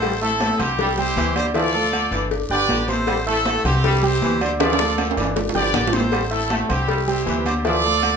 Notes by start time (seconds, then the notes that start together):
Already playing: A1 E4 A4 C5
0.02 G3, cowbell, high conga, low agogo, long guiro
0.21 A3 C4 E4 A4 E5 E6, high conga
0.40 A3, cowbell, high conga, low agogo, short guiro
0.59 C2 C4 E4 G4 C5 C6, cowbell, high conga, low conga, low agogo, short guiro
0.79 G3, cowbell, high conga, low conga, long guiro
0.97 G3 E4 G4 C5 G5, high conga, low agogo
1.16 D2 E3, cowbell, high conga, short guiro
1.36 D4 C5 D5 D6, cowbell, high conga, low agogo, short guiro
1.54 E3 F3 E4 F4 A4 D5 E5, cowbell, high conga, low agogo, long guiro
1.74 A3 A4 A5, high conga
1.93 cowbell, high conga, low agogo, short guiro
2.11 G1 E3 D4 D5 D6, cowbell, high conga, low agogo, short guiro
2.31 cowbell, high conga, long guiro
2.50 G1 D3 G4 B4 D5 G5 G6, high conga
2.69 A1, cowbell, high conga, low timbale, low agogo, short guiro
2.88 C4 E4 A4 C5 C6, cowbell, high conga, short guiro
3.07 G3, cowbell, high conga, low agogo, long guiro
3.27 A3 C4 E4 A4 E5 E6, high conga
3.45 A3, cowbell, high conga, low agogo, short guiro
3.64 C2 C4 E4 G4 C5 C6, cowbell, high conga, low conga, low agogo, short guiro
3.84 G3, cowbell, high conga, low conga, long guiro
4.02 G3 E4 G4 C5 G5, high conga, low agogo
4.22 D2 E3, cowbell, high conga, short guiro
4.41 D4 C5 D5 D6, cowbell, high conga, low agogo, short guiro
4.59 E3 F3 E4 F4 A4 D5 E5, cowbell, high bongo, high timbale, low agogo, long guiro
4.73 high timbale
4.78 A3 A4 A5, high bongo, high conga
4.98 cowbell, high conga, high timbale, low agogo, short guiro
5.11 high timbale
5.16 G1 E3 D4 D5 D6, cowbell, high conga, low agogo, short guiro
5.24 high timbale
5.36 cowbell, high conga, low timbale, long guiro
5.49 low timbale
5.54 G1 D3 G4 B4 D5 G5 G6, low bongo, high conga
5.62 low timbale
5.74 A1, cowbell, low bongo, high conga, low agogo, short guiro
5.88 low timbale
5.92 C4 E4 A4 C5 C6, cowbell, low bongo, high conga, short guiro
6.00 low timbale
6.12 G3, cowbell, high conga, low agogo, long guiro
6.31 A3 C4 E4 A4 E5 E6, high conga
6.50 A3, cowbell, high conga, low agogo, short guiro
6.69 C2 C4 E4 G4 C5 C6, cowbell, high conga, low conga, low agogo, short guiro
6.88 G3, cowbell, high conga, long guiro
7.07 G3 E4 G4 C5 G5, high conga, low agogo
7.26 D2 E3, cowbell, high conga, low timbale, short guiro
7.45 D4 C5 D5 D6, cowbell, high conga, low agogo, short guiro
7.64 E3 F3 E4 F4 A4 D5 E5, cowbell, high conga, low agogo, long guiro
7.84 A3 A4 A5, high conga
8.02 cowbell, high conga, low agogo, short guiro